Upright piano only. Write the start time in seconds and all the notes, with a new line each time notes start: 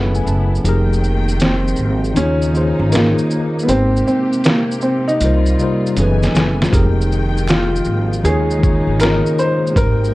1.41 C4
2.17 C#4
2.93 A#3
3.63 B3
3.69 C4
4.07 C4
4.45 A#3
4.83 C4
5.08 D#4
7.49 F4
8.25 G#4
9.01 A#4
9.39 C5
9.77 A#4